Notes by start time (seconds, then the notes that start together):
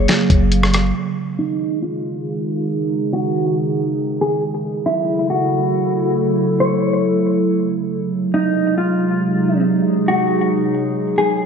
Already playing: C#3 F#3 A#3 G#4 F5
0.08 snare, closed hi-hat
0.30 F#1, kick, closed hi-hat
0.52 closed hi-hat
0.63 cross-stick
0.74 cross-stick, closed hi-hat
0.96 C#3 D#3 G#3 D#4 G#4
1.39 D#4
1.82 F4
3.13 F#4
4.21 G#4
4.44 C#3 F#3 A3 E4 A4
4.86 E4
5.30 F#4
6.60 C#5
7.91 C3 G#3 D#4 G#4
8.34 D#4
8.78 F4
10.08 F#4
11.18 G#4